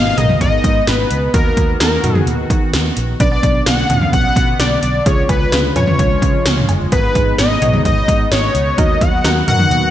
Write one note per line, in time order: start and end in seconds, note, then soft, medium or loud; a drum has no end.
0.00 0.11 G#1 loud
0.00 1.32 B2 medium
0.00 1.32 G#3 medium
0.00 3.16 B3 medium
0.00 1.32 D#4 medium
0.00 0.19 F5 loud
0.17 0.34 B1 medium
0.17 0.77 B3 medium
0.17 0.77 G#4 medium
0.17 0.77 A#4 medium
0.17 0.40 D#5 loud
0.17 closed hi-hat medium
0.17 mid tom medium
0.29 mid tom medium
0.41 0.57 G#1 loud
0.41 0.89 D#5 loud
0.41 kick medium
0.41 closed hi-hat medium
0.64 0.80 G#2 loud
0.64 kick medium
0.64 closed hi-hat medium
0.87 1.04 G#1 loud
0.87 1.33 B4 medium
0.87 snare loud
0.87 closed hi-hat medium
1.11 1.27 C#2 loud
1.11 closed hi-hat medium
1.34 1.50 D#2 loud
1.34 3.18 D#3 medium
1.34 1.64 D#4 medium
1.34 3.18 F#4 medium
1.34 1.64 F#4 medium
1.34 1.77 A#4 loud
1.34 1.64 A#4 medium
1.34 kick loud
1.34 closed hi-hat medium
1.57 1.73 D#2 loud
1.57 kick medium
1.57 closed hi-hat medium
1.80 1.97 D#2 loud
1.80 1.95 D#4 medium
1.80 1.95 F#4 medium
1.80 2.24 A#4 medium
1.80 1.95 A#4 medium
1.80 snare loud
1.80 closed hi-hat medium
2.04 2.20 F#2 loud
2.04 2.63 D#4 medium
2.04 2.63 F#4 medium
2.04 2.63 A#4 medium
2.04 closed hi-hat medium
2.04 mid tom medium
2.15 mid tom loud
2.27 2.43 D#2 loud
2.27 closed hi-hat medium
2.50 2.75 D#3 medium
2.50 kick loud
2.50 closed hi-hat medium
2.73 2.90 D#2 loud
2.73 snare loud
2.73 closed hi-hat medium
2.97 3.13 A#1 medium
2.97 closed hi-hat medium
3.20 3.36 B1 loud
3.20 6.88 D3 medium
3.20 5.04 B3 medium
3.20 3.27 C#4 medium
3.20 3.27 D4 medium
3.20 3.27 B4 medium
3.20 3.63 D5 loud
3.20 kick loud
3.20 closed hi-hat medium
3.32 3.69 B3 medium
3.32 3.69 D4 medium
3.32 3.69 D5 medium
3.43 3.59 B1 loud
3.43 kick medium
3.43 closed hi-hat medium
3.66 3.83 B1 loud
3.66 4.10 F#5 loud
3.66 snare loud
3.66 closed hi-hat medium
3.90 4.06 D2 medium
3.90 4.49 F3 medium
3.90 4.49 C#4 medium
3.90 4.49 D4 medium
3.90 closed hi-hat medium
3.90 mid tom medium
4.01 mid tom medium
4.13 4.29 B1 loud
4.13 4.56 F#5 loud
4.13 kick medium
4.13 closed hi-hat medium
4.36 4.52 B2 loud
4.36 kick medium
4.36 closed hi-hat medium
4.59 4.76 B1 loud
4.59 5.07 D5 loud
4.59 snare loud
4.59 closed hi-hat medium
4.83 4.99 B1 medium
4.83 closed hi-hat medium
5.06 5.22 C#2 loud
5.06 6.90 F3 medium
5.06 8.74 G#3 medium
5.06 5.36 C#4 medium
5.06 5.36 F4 medium
5.06 6.90 F4 medium
5.06 5.36 G#4 medium
5.06 5.29 C#5 loud
5.06 kick loud
5.06 closed hi-hat medium
5.29 5.45 C#2 loud
5.29 5.73 B4 medium
5.29 kick medium
5.29 closed hi-hat medium
5.29 cowbell medium
5.52 5.69 C#2 loud
5.52 5.67 C#4 medium
5.52 5.67 F4 medium
5.52 5.67 G#4 medium
5.52 snare loud
5.52 closed hi-hat medium
5.76 5.92 F2 loud
5.76 6.35 C#4 medium
5.76 6.35 F4 medium
5.76 6.35 B4 medium
5.76 6.65 C#5 medium
5.76 closed hi-hat medium
5.76 mid tom medium
5.76 cowbell medium
5.87 mid tom loud
5.99 6.15 C#2 loud
5.99 kick medium
5.99 closed hi-hat medium
6.22 6.38 C#3 loud
6.22 kick medium
6.22 closed hi-hat medium
6.46 6.62 C#2 loud
6.46 snare loud
6.46 closed hi-hat medium
6.57 mid tom medium
6.69 6.85 F#1 medium
6.69 closed hi-hat medium
6.69 cowbell medium
6.92 7.08 G#1 loud
6.92 8.76 B2 medium
6.92 7.00 B3 medium
6.92 9.90 B3 medium
6.92 8.76 D#4 medium
6.92 7.00 G#4 medium
6.92 6.99 A#4 medium
6.92 7.35 B4 loud
6.92 kick loud
6.92 closed hi-hat medium
7.04 7.41 B3 medium
7.04 7.41 G#4 medium
7.04 7.41 B4 medium
7.15 7.32 G#1 loud
7.15 kick medium
7.15 closed hi-hat medium
7.38 7.55 G#1 loud
7.38 7.82 D#5 loud
7.38 snare loud
7.38 closed hi-hat medium
7.62 7.78 B1 loud
7.62 8.21 B3 medium
7.62 8.21 G#4 medium
7.62 8.21 C#5 medium
7.62 closed hi-hat medium
7.62 mid tom medium
7.74 mid tom medium
7.85 8.01 G#1 loud
7.85 8.28 D#5 loud
7.85 kick medium
7.85 closed hi-hat medium
8.08 8.25 G#2 loud
8.08 kick loud
8.08 closed hi-hat medium
8.32 8.48 G#1 loud
8.32 8.80 C#5 loud
8.32 snare loud
8.32 closed hi-hat medium
8.55 8.71 C#2 loud
8.55 closed hi-hat medium
8.78 8.94 D#2 loud
8.78 9.90 D#3 medium
8.78 9.90 F#3 medium
8.78 9.08 D#4 medium
8.78 9.08 F#4 medium
8.78 9.90 F#4 loud
8.78 9.08 A#4 medium
8.78 9.03 D#5 loud
8.78 kick loud
8.78 closed hi-hat medium
9.01 9.18 D#2 loud
9.01 9.47 F#5 loud
9.01 kick medium
9.01 closed hi-hat medium
9.24 9.41 D#2 loud
9.24 9.40 D#4 medium
9.24 9.40 F#4 medium
9.24 9.40 A#4 medium
9.24 snare loud
9.24 closed hi-hat medium
9.48 9.64 F#2 medium
9.48 9.90 D#4 medium
9.48 9.90 F#4 medium
9.48 9.90 A#4 medium
9.48 9.90 F#5 loud
9.48 closed hi-hat medium
9.48 mid tom medium
9.60 mid tom medium
9.71 9.87 D#2 loud
9.71 closed hi-hat medium